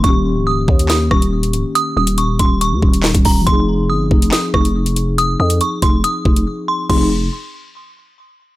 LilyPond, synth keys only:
\new Staff \with { instrumentName = "Synth keys" } { \time 4/4 \key f \minor \tempo 4 = 140 <ees bes des' g'>1~ | <ees bes des' g'>1 | <f c' ees' aes'>1~ | <f c' ees' aes'>1 |
<f c' ees' aes'>8 r2. r8 | }